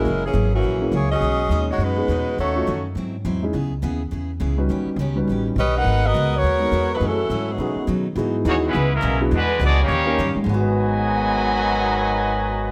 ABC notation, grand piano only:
X:1
M:4/4
L:1/8
Q:"Swing" 1/4=208
K:G#m
V:1 name="Grand piano"
z4 z [A,CEFG] z2 | z4 z [B,CDFG] z2 | z [=A,CD^EF] z4 z [G,CD=EG] | z6 z [=G,CDFB]- |
[=G,CDFB]2 z [G,CDFB]3 z2 | z4 z [G,B,DFA] z2 | [=A,CEFG] z3 [B,CDFG]3 z | [B,DEFG]2 [B,DEFG]2 z3 [B,=DEFG] |
z4 z [A,CD=GA] z2 | [G,,G,B,FB]8- | [G,,G,B,FB]8 |]